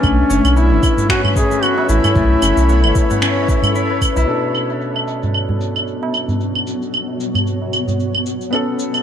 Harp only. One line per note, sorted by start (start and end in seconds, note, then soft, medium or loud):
0.00 1.51 A3 loud
0.00 0.56 B3 medium
0.00 0.36 D4 loud
0.30 0.71 C#4 loud
0.56 0.98 B3 medium
0.71 1.09 C#4 medium
0.98 1.62 B3 medium
1.09 1.36 C#4 loud
1.36 1.77 C#4 medium
1.51 1.89 A3 medium
1.63 2.69 B3 medium
1.78 2.04 C#4 medium
1.89 2.16 A3 medium
2.04 2.42 C#4 loud
2.16 5.49 A3 loud
2.43 2.84 C#4 medium
2.69 3.10 B3 medium
2.84 3.22 C#4 medium
3.11 6.21 B3 medium
3.22 6.12 C#4 loud
3.48 3.75 E4 medium
3.75 4.16 E4 loud
3.90 5.95 B4 medium
4.17 6.78 E4 loud